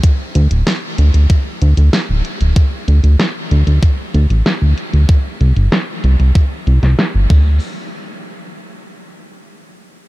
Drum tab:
CC |----------------|----------------|--------------x-|----------------|
HH |x-xxx-xxx-xxx-xx|x-xxx-xxx-xxx-xx|x-xxx-xxx-xxx---|----------------|
SD |----o-------o---|----o-------o---|----o------oo---|----------------|
BD |o-------o-------|o-------o-------|o-------o-----o-|----------------|